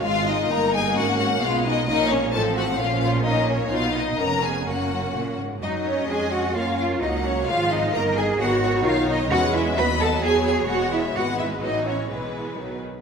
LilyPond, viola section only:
\new Staff \with { instrumentName = "Viola section" } { \time 2/4 \key fis \major \tempo 4 = 130 << { eis'4 dis'4 | cis'4 b4 | cis'4 c'4 | cis'4 cis'4 |
dis'4 cis'4 | cis'4. r8 | dis'4 cis'4 | cis'4 ais4 |
gis4 ais4 | b4 dis'4 | \key e \major cis'4 b4 | b4 gis4 |
b4 fis4 | gis4 fis8 r8 | } \\ { gis4 ais4~ | ais4 gis4 | ais4 f4 | eis4 ais4 |
b4 b4 | ais4. r8 | fis4 gis4 | ais4 fis4 |
eis4 dis4 | dis2 | gis4 fis4~ | fis4 b4 |
gis4 e4 | e4 dis8 r8 | } >> }